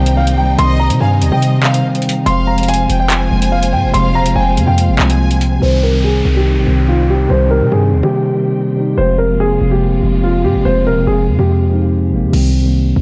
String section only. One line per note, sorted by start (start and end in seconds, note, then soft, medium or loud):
0.00 2.23 G3 medium
0.00 2.23 D#4 medium
0.00 2.22 C5 medium
2.26 5.59 G#3 medium
2.26 5.59 F4 medium
2.26 5.59 C5 medium
5.62 8.94 D#3 medium
5.62 8.94 C4 medium
5.62 8.94 G5 medium
8.98 12.30 C3 medium
8.98 12.30 G#3 medium
8.98 12.30 F4 medium